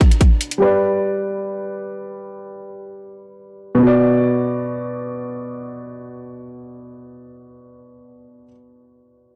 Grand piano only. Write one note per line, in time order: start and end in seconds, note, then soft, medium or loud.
0.00 0.55 B2 medium
0.00 0.56 F#3 medium
0.00 0.57 D4 medium
0.00 0.58 B4 medium
0.58 3.75 G3 medium
0.58 3.76 G4 medium
0.58 3.77 B4 medium
0.64 3.78 D5 medium
3.75 8.44 B2 medium
3.79 8.46 B3 medium
3.83 8.48 F#4 medium
3.87 8.50 D5 medium